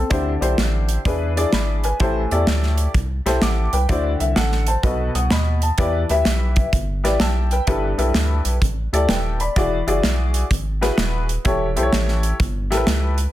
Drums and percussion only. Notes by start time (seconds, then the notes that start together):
0.11 kick, closed hi-hat
0.42 closed hi-hat
0.58 snare, closed hi-hat
0.89 closed hi-hat
1.05 kick, closed hi-hat
1.37 closed hi-hat
1.53 snare, closed hi-hat
1.84 closed hi-hat
2.00 kick, closed hi-hat
2.31 closed hi-hat
2.47 snare, closed hi-hat
2.63 snare
2.78 closed hi-hat
2.94 kick, closed hi-hat
3.26 snare, closed hi-hat
3.42 snare, closed hi-hat
3.73 closed hi-hat
3.89 kick, closed hi-hat
4.20 closed hi-hat
4.36 snare, closed hi-hat
4.52 snare
4.67 closed hi-hat
4.83 kick, closed hi-hat
5.15 closed hi-hat
5.30 snare, closed hi-hat
5.62 closed hi-hat
5.78 kick, closed hi-hat
6.09 closed hi-hat
6.25 snare, closed hi-hat
6.56 kick, closed hi-hat
6.73 kick, closed hi-hat
7.05 snare, closed hi-hat
7.20 snare, closed hi-hat
7.51 closed hi-hat
7.67 kick, closed hi-hat
7.99 closed hi-hat
8.14 snare, closed hi-hat
8.45 closed hi-hat
8.62 kick, closed hi-hat
8.94 closed hi-hat
9.09 snare, closed hi-hat
9.40 closed hi-hat
9.56 kick, closed hi-hat
9.88 closed hi-hat
10.03 snare, closed hi-hat
10.34 closed hi-hat
10.51 kick, closed hi-hat
10.82 snare, closed hi-hat
10.98 snare, closed hi-hat
11.29 closed hi-hat
11.45 kick, closed hi-hat
11.77 closed hi-hat
11.93 snare, closed hi-hat
12.08 snare
12.23 closed hi-hat
12.40 kick, closed hi-hat
12.72 snare, closed hi-hat
12.87 snare, closed hi-hat
13.18 closed hi-hat